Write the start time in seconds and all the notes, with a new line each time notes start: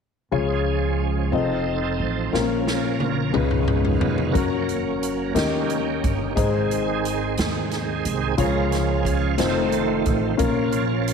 0.31 C#2 C#3 F3 G#3 C#4 F4 G#4 C#5
1.32 F1 C4 D#4 F4 A4 D#5
1.99 A1
2.33 A#1 A#2 A#3 C4 C#4 F4 A#4, snare
2.39 C#4
2.67 snare
3.00 high tom
3.33 C#2 C#3 D#3 G#3 B3 C#4 D#4 F4 B4, mid tom
3.51 mid tom
3.68 mid tom
3.85 floor tom
4.01 F1, floor tom
4.18 floor tom
4.31 F#1 F#3 A#3 C#4 F#4 A#4, kick, closed hi-hat
4.69 closed hi-hat
5.03 closed hi-hat
5.35 D#2 D#3 C#4 D#4 G4 A#4 D#5, snare, closed hi-hat
5.70 closed hi-hat
6.04 G1, kick, closed hi-hat
6.35 G#1 G#2 D#3 G#3 C4 D#4 G#4 C5, kick, closed hi-hat
6.71 closed hi-hat
7.05 closed hi-hat
7.38 D#2, snare, closed hi-hat
7.71 snare, closed hi-hat
8.05 C2, closed hi-hat
8.37 C#2 C#3 F3 G#3 C#4 F4 G#4 A#4 C#5, kick, closed hi-hat
8.72 snare, closed hi-hat
9.03 G#4, kick, closed hi-hat
9.36 F1 D#3 A3 C4 D#4 F4 A4 C5, snare, closed hi-hat
9.72 closed hi-hat
10.06 A1, kick, closed hi-hat
10.37 A#1 A#2 F3 A#3 C#4 F4 A#4 C#5, kick, closed hi-hat
10.72 closed hi-hat
11.08 closed hi-hat